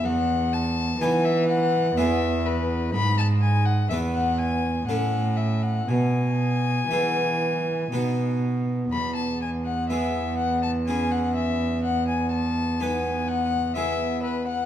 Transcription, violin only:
\new Staff \with { instrumentName = "Violin" } { \time 3/4 \key e \major \tempo 4 = 62 fis''8 a''8 gis''16 e''16 fis''8 e''8 b'8 | b''16 a''16 gis''16 fis''16 e''16 fis''16 gis''8 fis''8 e''16 fis''16 | gis''2~ gis''8 r8 | b''16 a''16 gis''16 fis''16 e''8 fis''16 a''16 gis''16 fis''16 e''8 |
fis''16 gis''16 a''8 gis''8 fis''8 e''8 b'16 fis''16 | }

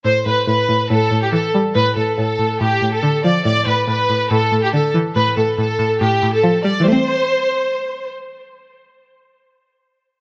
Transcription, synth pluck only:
\new Staff \with { instrumentName = "Synth pluck" } { \clef bass \time 4/4 \key a \minor \tempo 4 = 141 a,8 a,8 a,8 a,8 a,8 a,8 e8 g8 | a,8 a,8 a,8 a,8 a,8 a,8 d8 f8 | a,8 a,8 a,8 a,8 a,8 a,8 d8 e8 | a,8 a,8 a,8 a,8 a,8 a,8 f8 g8 |
<e g a c'>1~ | <e g a c'>1 | }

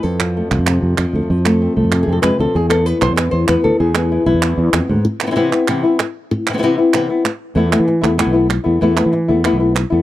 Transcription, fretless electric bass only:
\new Staff \with { instrumentName = "Fretless electric bass" } { \clef bass \time 4/4 \tempo 4 = 192 f,4. c,16 f,8. f,8 f,16 r16 d,16 r16 | f,4. c,16 f,8. f,8 f,16 r16 d,16 r16 | e,4. b,,16 e,8. e,8 e,16 r16 d,16 r16 | e,4. b,,16 e,8. e,8 e,16 r16 d,16 r16 |
r1 | r1 | e,8. e8. e,8. b,,4~ b,,16 e,8 | e,8. e8. e,8. b,,4~ b,,16 e,8 | }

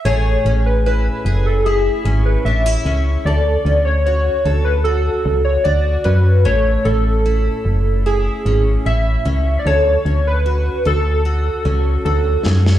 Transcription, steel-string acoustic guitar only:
\new Staff \with { instrumentName = "Steel-string acoustic guitar" } { \time 4/4 \key a \major \tempo 4 = 75 <a gis'>8 cis'8 e'8 gis'8 e'8 cis'8 d'16 e'16 cis'8 | a'8 cis'8 fis'8 a'8 fis'4 fis'8 cis'8 | a8 cis'8 e'4 e'8 cis'8 e'8 cis'8 | a'8 cis'8 fis'8 a'8 fis'8 cis'8 fis'8 cis'8 | }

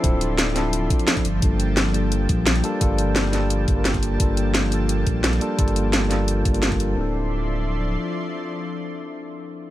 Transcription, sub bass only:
\new Staff \with { instrumentName = "Sub bass" } { \clef bass \time 4/4 \key d \minor \tempo 4 = 173 d,,2~ d,,8 r4 g,,8 | g,,2~ g,,8 bes,,4 r8 | g,,2~ g,,8 g,,4. | g,,2~ g,,8 bes,,4 r8 |
g,,2~ g,,8 g,,4. | d,,2. r4 | r1 | }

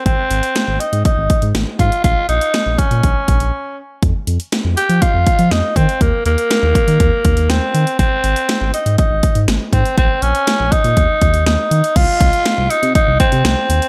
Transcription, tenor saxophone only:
\new Staff \with { instrumentName = "Tenor saxophone" } { \time 4/4 \key c \phrygian \tempo 4 = 121 c'4. ees'8 ees'4 r8 f'8 | f'8 ees'4 des'2 r8 | r4. g'8 f'4 ees'8 c'8 | bes8 bes2~ bes8 c'4 |
c'4. ees'8 ees'4 r8 c'8 | c'8 des'4 ees'4. ees'4 | f'4. ees'8 ees'8 c'4. | }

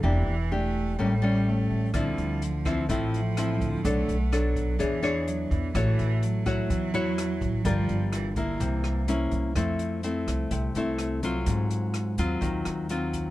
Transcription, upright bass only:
\new Staff \with { instrumentName = "Upright bass" } { \clef bass \time 4/4 \key f \major \tempo 4 = 126 e,,8 e,,4. a,,4. a,,8 | d,8 d,4. a,,4. d,8 | b,,8 b,,4. e,4. e,8 | a,,8 a,,4. e,4. a,,8 |
g,,8 g,,4. c,4. c,8 | f,4. c,8 c,8 c,4. | aes,4. ees,8 ees,8 ees,4. | }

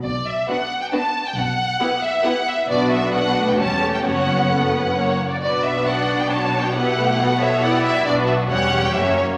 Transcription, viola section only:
\new Staff \with { instrumentName = "Viola section" } { \time 3/4 \key b \minor \tempo 4 = 135 << { r4 d'4 d'4 | r4 e'4 e'4 | d'4 d'4 cis'4 | cis'2 cis'8 r8 |
d'2. | e'4 fis'4 e'4 | d'4 cis'4 cis'4 | } \\ { r4 b4 b4 | r4 b4 b4 | b4 b8 a8 g8 a8 | b2 ais8 r8 |
b2. | b8 a8 b4 b4 | b4 g8 g8 ais4 | } >> }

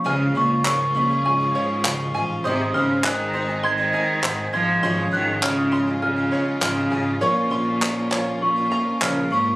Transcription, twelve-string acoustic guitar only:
\new Staff \with { instrumentName = "Twelve-string acoustic guitar" } { \time 4/4 \key des \major \tempo 4 = 100 <des f aes des' f'>8 <f aes des' f'>8 <des f aes des' f'>8 <f aes des' f'>16 <aes des' f'>8 <aes des' f'>16 <f aes des' f'>8 <des f aes des' f'>16 <aes des' f'>16 <f aes des' f'>8 | <aes, ees aes c' ees' aes'>8 <aes c' ees' aes'>8 <aes, ees aes c' ees' aes'>8 <aes c' ees' aes'>16 <aes c' ees' aes'>8 <aes c' ees' aes'>16 <aes c' ees' aes'>8 <aes, ees aes c' ees' aes'>16 <aes c' ees' aes'>16 <aes c' ees' aes'>8 | <aes, des aes des' f' aes'>8 <aes des' f' aes'>8 <aes, des aes des' f' aes'>8 <aes des' f' aes'>16 <aes des' f' aes'>8 <aes des' f' aes'>16 <aes des' f' aes'>8 <aes, des aes des' f' aes'>16 <aes des' f' aes'>16 <aes des' f' aes'>8 | <bes, f des' f' bes'>8 <f des' f' bes'>8 <bes, f des' f' bes'>8 <f des' f' bes'>16 <des' f' bes'>8 <des' f' bes'>16 <f des' f' bes'>8 <bes, f des' f' bes'>16 <des' f' bes'>16 <f des' f' bes'>8 | }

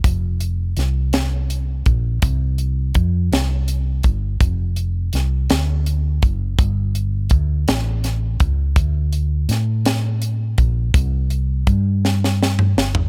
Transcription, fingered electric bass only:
\new Staff \with { instrumentName = "Fingered electric bass" } { \clef bass \time 6/8 \key f \major \tempo 4. = 55 f,,4 c,4. bes,,8 | c,4 f,8 c,4 g,,8 | f,,4 c,8 d,4 fis,,8 | g,,4 d,8 a,,4 cis,8 |
d,4 a,4. bes,,8 | c,4 g,4. g,,8 | }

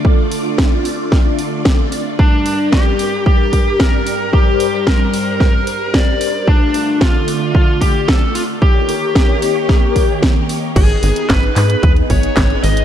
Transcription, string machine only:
\new Staff \with { instrumentName = "String machine" } { \time 4/4 \key g \minor \tempo 4 = 112 << { d''1~ | d''1 | c''1 | d''1 |
des''1 | \key gis \minor gis'1 | } \\ { <d a f'>1 | <g, g bes'>1~ | <g, g bes'>1 | <d a f'>1 |
<ees bes g'>1 | <b dis'>1 | } >> }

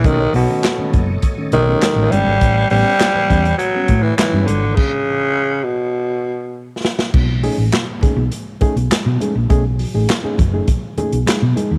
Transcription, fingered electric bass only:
\new Staff \with { instrumentName = "Fingered electric bass" } { \clef bass \time 4/4 \key b \mixolydian \tempo 4 = 102 b,,8 b,,16 r8. fis,,8 r8 b,,8 r16 a,,16 g,,16 gis,,16 | a,,8 a,,16 r8. e,8 r8 a,8 r16 g,16 g,,16 gis,,16 | r1 | b,,8. a,,16 r8. b,,16 r8. b,,16 r16 b,16 r16 ais,,16 |
b,,8. a,,16 r8 fis,,8 r8. b,,16 r16 b,16 r16 dis,16 | }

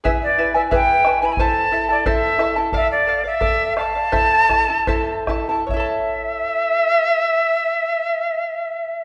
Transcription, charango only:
\new Staff \with { instrumentName = "Charango" } { \time 2/4 \key e \phrygian \tempo 4 = 83 <e' gis' b' e'' gis''>8 <e' b' e'' gis''>16 <e' b' gis''>16 <e' gis' b' e''>8 <e' b' e'' gis''>16 <e' b' gis''>16 | <e' a' c'' e'' a''>8 <e' a' e'' a''>16 <e' a' a''>16 <e' a' c'' e'' a''>8 <e' a' e'' a''>16 <e' a' a''>16 | <a' d'' f''>8 <a' d'' f''>16 <d'' f''>16 <a' d''>8 <a' d'' f''>16 <d'' f''>16 | <e' a' c'' e'' a''>8 <e' a' e'' a''>16 <e' a' a''>16 <e' a' c'' e'' a''>8 <e' a' e'' a''>16 <e' a' a''>16 |
<e' a' cis'' e'' a''>2~ | <e' a' cis'' e'' a''>2 | }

